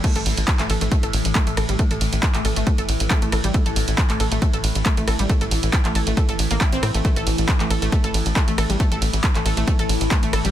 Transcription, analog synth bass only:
X:1
M:4/4
L:1/16
Q:1/4=137
K:Cmix
V:1 name="Analog synth bass" clef=bass
z A,,, A,,, A,,, z A,,, A,,, A,,, z A,,, A,,, A,,, z A,,, A,,, A,,, | z A,,, A,,, A,,, z A,,, A,,, A,,, z A,,, A,,, A,,, z A,,, A,,, A,,, | z A,,, A,,, A,,, z A,,, A,,, A,,, z A,,, A,,, A,,, z A,,, A,,, A,,, | z A,,, A,,, A,,, z A,,, A,,, A,,, z A,,, A,,, A,,, z A,,, A,, A,,, |
z A,,, A,,, A,,, z A,,, A,,, A,,, z A,,, A,,, A,,, z A,,, A,,, A,,, | z A,,, A,,, A,,, z A,,, A,,, A,,, z A,,, A,,, A,,, z A,,, A,,, A,,, |]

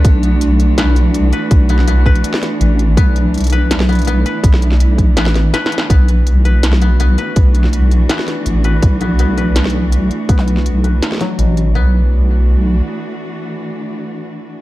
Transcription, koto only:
X:1
M:4/4
L:1/8
Q:1/4=164
K:Bm
V:1 name="Koto"
B3 z B, z2 B | z B, B, B4 z | B, z2 B z B, B, B- | B3 z B, z B z |
B, z2 B z B, B, B- | B3 z B, z2 B | z B, B, B4 z | B, z2 B z F, B,, z |
B, z6 z | z8 |]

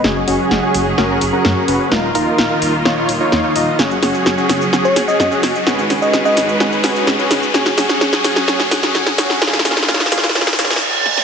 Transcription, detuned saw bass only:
X:1
M:4/4
L:1/8
Q:1/4=128
K:F#
V:1 name="Detuned saw bass" clef=bass
F,,, F,,, F,,, F,,, F,,, F,,, F,, F,,, | D,,, D,,, D,,, D,,, D,,, D,,, D,, D,,, | F,,, F,,, F,,, F,,, F,,, F,,, F,, F,,, | G,,, G,,, G,,, G,,, G,,, G,,, G,, G,,, |
F,,, F,,, F,,, F,,, F,,, F,,, F,, F,,, | D,,, D,,, D,,, D,,, D,,, D,, z2 |]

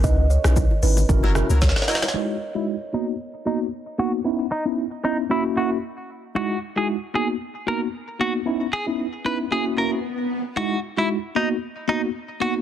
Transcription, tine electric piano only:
X:1
M:4/4
L:1/16
Q:"Swing 16ths" 1/4=114
K:B
V:1 name="Tine electric piano"
[CDEB]2 z [CDEB] z2 [CDEB]2 [CEFA]2 [CEFA]2 z4 | [G,DEF]2 z [G,DEF] z2 [A,B,DF]2 z2 [A,B,DF]2 z2 [A,B,DF]2 | [B,CDE]2 z [B,CDE] z2 [B,CDE]2 [A,CEF]2 [A,CEF]2 z4 | [G,DEF]2 z [G,DEF] z2 [A,B,DF]2 z2 [A,B,DF]2 z2 [A,B,DF]2 |
[B,CDE]2 z [B,CDE] z2 [B,CDE]2 [A,CEF]2 [A,CEF]2 z4 | [G,DEF]2 z [G,DEF] z2 [A,B,DF]2 z2 [A,B,DF]2 z2 [A,B,DF]2 |]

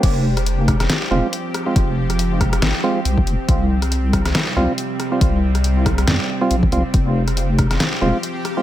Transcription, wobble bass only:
X:1
M:4/4
L:1/16
Q:"Swing 16ths" 1/4=139
K:Fm
V:1 name="Wobble bass" clef=bass
F,,,8 z2 F,,, z4 z | F,,,8 A,,, z3 C,,2 F,,, z | C,,8 z2 C,, z4 z | C,,8 F,, z3 B,,,2 C,, z |
F,,,8 z2 F,,, z4 z |]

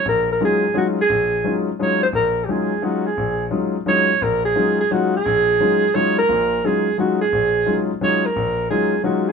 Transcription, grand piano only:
X:1
M:3/4
L:1/8
Q:"Swing" 1/4=174
K:Ebm
V:1 name="Grand piano"
B,,,2 [G,A,DEF] z [G,A,DEF] z | B,,,2 [G,A,DEF] z [G,A,DEF] z | B,,,2 [G,A,DEF] z [G,A,DEF] z | B,,,2 [G,A,DEF] z [G,A,DEF] z |
B,,,2 [G,A,DEF] z [G,A,DEF] z | B,,,2 [G,A,DEF] z [G,A,DEF] z | [B,,,B,,]2 [G,A,DEF] z [G,A,DEF] z | B,,,2 [G,A,DEF] z [G,A,DEF] z |
B,,,2 [G,A,DEF] z [G,A,DEF] z |]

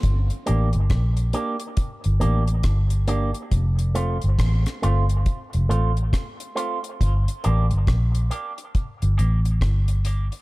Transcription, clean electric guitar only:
X:1
M:4/4
L:1/8
Q:"Swing 16ths" 1/4=69
K:Gm
V:1 name="Clean electric guitar"
z [B,DG] z [B,DG] z [B,DG] z [B,DG] | z [A,CF] z [A,CF] z [A,CF] z [A,CF] | z [B,DG] z [B,DG] z [B,DG] z [B,DG] |]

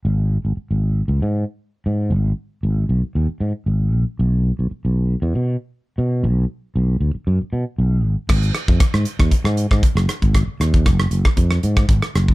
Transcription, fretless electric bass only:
X:1
M:4/4
L:1/16
Q:"Swing 16ths" 1/4=117
K:G#dor
V:1 name="Fretless electric bass" clef=bass
G,,,3 G,,, z G,,,3 C,, G,,2 z3 G,,2 | G,,,2 z2 G,,,2 B,,, z D,, z G,, z G,,,2 A,,, z | B,,,3 B,,, z B,,,3 =E,, B,,2 z3 B,,2 | B,,,2 z2 B,,,2 =D,, z F,, z B,, z B,,,2 G,,, z |
G,,,2 z E,, z G,, z D,, z G,,2 G,, z F,,, z G,,,- | G,,, z D,,2 F,,,2 F,,, z E,,2 G,,2 G,,, z F,,,2 |]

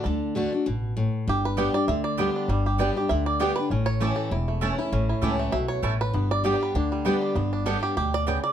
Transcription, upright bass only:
X:1
M:4/4
L:1/8
Q:"Swing" 1/4=197
K:Glyd
V:1 name="Upright bass" clef=bass
D,,4 A,,,4 | G,,,4 D,,4 | G,,,4 D,,4 | A,,,4 E,,,4 |
A,,,2 C,,2 B,,,2 A,,,2 | G,,,4 D,,4 | G,,,4 D,,4 |]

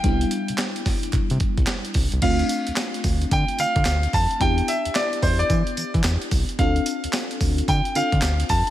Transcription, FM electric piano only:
X:1
M:4/4
L:1/8
Q:"Swing 16ths" 1/4=110
K:Ddor
V:1 name="FM electric piano"
[G,B,DE]8 | [A,CDF]8 | [B,DEG]8 | [CDFA]4- [CDFA] [CDFA]3 |]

